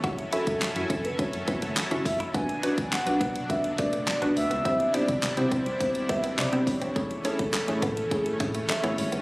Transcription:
<<
  \new Staff \with { instrumentName = "Soft synth lead" } { \time 4/4 \key b \dorian \tempo 4 = 104 cis''8 a'4~ a'16 b'16 cis''4 r8 e''8 | gis''4 fis''4 e''8 d''8 d''8 e''8~ | e''8 d''4 c''4 e''8 d''8 cis''8~ | cis''8 a'4 a'8 gis'16 a'8. e''8 cis''8 | }
  \new Staff \with { instrumentName = "Synth pluck" } { \time 4/4 \key b \dorian <cis' e' fis' a' e''>16 r16 <cis' e' fis' a' e''>8 r16 <cis' e' fis' a' e''>8 r16 <cis' e' fis' a' e''>16 r16 <cis' e' fis' a' e''>8 r16 <cis' e' fis' a' e''>8 r16 | <d' fis' b'>16 r16 <d' fis' b'>8 r16 <d' fis' b'>8 r16 <d' fis' b'>16 r16 <d' fis' b'>8 r16 <d' fis' b'>8 r16 | <b c' e' g' c''>16 r16 <b c' e' g' c''>8 r16 <b c' e' g' c''>8 r16 <b c' e' g' c''>16 r16 <b c' e' g' c''>8 r16 <b c' e' g' c''>8 r16 | <a cis' e' gis' cis''>16 r16 <a cis' e' gis' cis''>8 r16 <a cis' e' gis' cis''>8 r16 <a cis' e' gis' cis''>16 r16 <a cis' e' gis' cis''>8 r16 <a cis' e' gis' cis''>8 r16 | }
  \new Staff \with { instrumentName = "Analog synth pad" } { \time 4/4 \key b \dorian <fis cis' e' a' gis''>1 | <b, fis d'>1 | <c g d' e'>1 | <e a cis'>1 | }
  \new Staff \with { instrumentName = "Clean electric guitar" } { \time 4/4 \key b \dorian fis'16 r16 e'16 r8. cis'16 r8. b16 a16 r16 cis'16 r16 e'16 | b16 r16 d'16 r8. b16 r8. a16 a16 r16 b16 r16 b16 | c'16 r16 d'16 r8. c'16 r8. b16 b16 r16 c'16 r16 c'16 | a16 r16 cis'16 r8. b16 r8. a16 a16 r16 b16 r16 b16 | }
  \new Staff \with { instrumentName = "Analog synth bass" } { \clef bass \time 4/4 \key b \dorian fis,,8 r16 fis,16 fis,16 fis,16 r16 fis,,16 r16 fis,16 a,,16 fis,,16 fis,,16 fis,,16 fis,8 | b,,16 r8 b,,16 r16 b,,16 b,8 r16 b,,16 b,8 r16 b,,16 d,16 cis,16 | c,8 r16 c16 c16 c16 r16 c,16 r8 c,8 c16 r16 c,16 ais,,16 | a,,16 r8 a,,16 r16 a,,16 a,8 r16 a,,16 a,8 r16 a,,16 gis,,16 g,,16 | }
  \new DrumStaff \with { instrumentName = "Drums" } \drummode { \time 4/4 <hh bd>16 hh16 hh16 <hh bd>16 <hc hh sn>16 hh16 <hh bd>16 hh16 <hh bd>16 hh16 <hh bd>16 hh16 <hc hh sn>16 hh16 <hho bd>16 hh16 | <hh bd>16 hh16 hh16 <hh bd>16 <hc hh sn>16 hh16 <hh bd>16 hh16 <hh bd>16 hh16 <hh bd>16 hh16 <hc hh sn>16 hh16 hho16 hh16 | <hh bd>16 hh16 hh16 <hh bd>16 <hc hh sn>16 hh16 <hh bd>16 hh16 <hh bd>16 hh16 <hh bd>16 hh16 <hc hh sn>16 hh16 <hho bd>16 hh16 | <hh bd>16 hh16 hh16 <hh bd>16 <hc hh sn>16 hh16 <hh bd>16 hh16 <hh bd>16 hh16 <hh bd>16 hh16 <hc hh sn>16 hh16 hho16 hh16 | }
>>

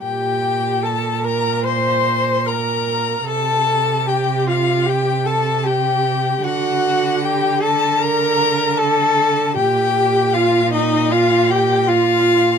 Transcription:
<<
  \new Staff \with { instrumentName = "Violin" } { \time 4/4 \key g \minor \tempo 4 = 76 g''4 a''8 bes''8 c'''4 bes''4 | a''4 g''8 f''8 g''8 a''8 g''4 | fis''4 g''8 a''8 bes''4 a''4 | g''4 f''8 ees''8 f''8 g''8 f''4 | }
  \new Staff \with { instrumentName = "Viola" } { \time 4/4 \key g \minor g'4 a'8 bes'8 c''4 bes'4 | a'4 g'8 f'8 g'8 a'8 g'4 | fis'4 g'8 a'8 bes'4 a'4 | g'4 f'8 ees'8 f'8 g'8 f'4 | }
  \new Staff \with { instrumentName = "Violin" } { \time 4/4 \key g \minor g'4 a'8 bes'8 c''4 bes'4 | a'4 g'8 f'8 g'8 a'8 g'4 | fis'4 g'8 a'8 bes'4 a'4 | g'4 f'8 ees'8 f'8 g'8 f'4 | }
  \new Staff \with { instrumentName = "Cello" } { \clef bass \time 4/4 \key g \minor bes,1 | c1 | d1 | bes,1 | }
>>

